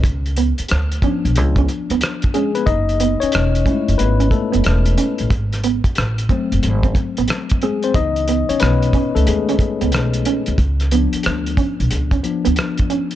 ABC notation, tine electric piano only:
X:1
M:4/4
L:1/16
Q:"Swing 16ths" 1/4=91
K:G#phr
V:1 name="Tine electric piano"
z12 z2 [G,G] [B,B] | [Dd]3 [Cc]4- [Cc] [B,B]2 [A,A]4 z2 | z12 z2 [G,G] [^B,^B] | d3 [Cc] [B,B]3 [A,A] [G,G]6 z2 |
z16 |]
V:2 name="Tine electric piano"
z6 [^E,B,=D]8- [E,B,D]2 | z6 [G,A,E]2 z8 | z6 [F,A,^B,]8- [F,A,B,]2 | [E,B,D]2 z12 z2 |
z2 [^E,B,=D]2 z6 [E,B,D]2 z4 |]